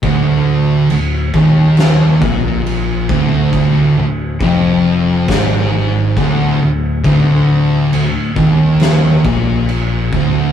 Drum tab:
CC |x-x-x-x-|x-x-x-x-|x-x-x-x-|
SD |----o---|----o---|----o---|
BD |o--o-o-o|o-o-o-o-|o--o-o-o|